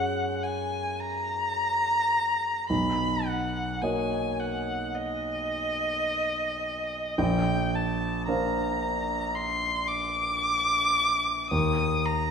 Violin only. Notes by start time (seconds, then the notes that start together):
Already playing: F#5
0.44 G#5
1.00 A#5
2.70 B5
3.26 F#5
3.81 G#5
4.39 F#5
4.95 D#5
7.18 G5
7.75 A5
8.29 A#5
9.35 C6
9.87 D6
11.50 D#6
12.05 A#5